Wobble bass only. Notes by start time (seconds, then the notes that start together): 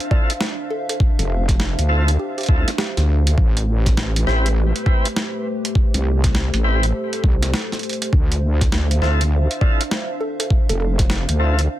1.19 F1
1.78 D2
2.48 D2
2.97 D2
3.38 A1
3.97 A1
4.27 A1
5.94 C2
6.53 A1
7.24 C2
8.13 D2
8.72 D2
9.02 D2
10.69 F1
11.29 D2